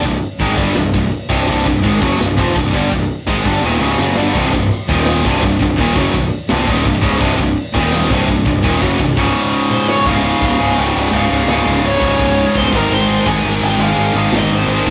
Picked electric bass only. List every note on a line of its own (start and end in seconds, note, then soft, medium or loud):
0.03 0.20 C1 medium
0.40 0.57 G#1 medium
0.58 0.74 G1 loud
0.76 0.92 C1 medium
0.93 1.10 C1 medium
1.30 1.46 C1 loud
1.48 1.64 C1 medium
1.66 1.82 C1 medium
1.83 2.00 G#1 loud
2.01 2.18 F#1 loud
2.20 2.37 C1 medium
2.38 2.54 F1 loud
2.55 2.72 C1 medium
2.74 2.90 G1 loud
2.91 3.08 C1 medium
3.27 3.44 G#1 medium
3.45 3.62 G1 medium
3.63 3.80 D#1 medium
3.81 3.98 C#1 loud
3.99 4.15 F#1 loud
4.17 4.33 G1 loud
4.35 4.51 C1 medium
4.53 4.69 C1 medium
4.89 5.22 D#1 medium
5.24 5.41 C1 loud
5.42 5.59 C1 medium
5.60 5.77 C1 medium
5.78 5.94 D#1 medium
5.96 6.12 F#1 loud
6.14 6.30 C1 medium
6.50 6.66 C1 medium
6.67 6.84 D#1 loud
6.85 7.01 C1 medium
7.03 7.19 C#1 loud
7.20 7.37 C1 loud
7.39 7.55 C1 medium
7.75 8.07 D#1 loud
8.10 8.26 C1 loud
8.28 8.44 C1 medium
8.45 8.62 C1 medium
8.63 8.80 D#1 medium
8.82 8.98 F#1 loud
8.99 9.16 C1 medium
9.17 9.33 C#1 loud
10.05 10.31 C#1 loud
10.41 10.54 C#1 medium
10.61 10.73 C#1 medium
10.78 10.90 C#1 medium
10.95 11.08 C#1 loud
11.13 11.26 C#1 loud
11.31 11.43 C#1 loud
11.47 11.60 C#1 loud
11.66 11.79 C#1 loud
11.82 11.96 C#1 medium
12.01 12.14 C#1 medium
12.19 12.45 C#1 medium
12.55 12.68 C#1 loud
12.73 12.86 G#1 medium
12.91 13.16 G#1 loud
13.26 13.39 G#1 loud
13.44 13.57 G#1 medium
13.62 13.75 G#1 medium
13.79 13.92 G#1 loud
13.97 14.10 G#1 loud
14.14 14.27 G#1 loud
14.33 14.46 G#1 medium
14.51 14.63 G#1 loud
14.67 14.81 G#1 medium
14.87 14.90 G#1 medium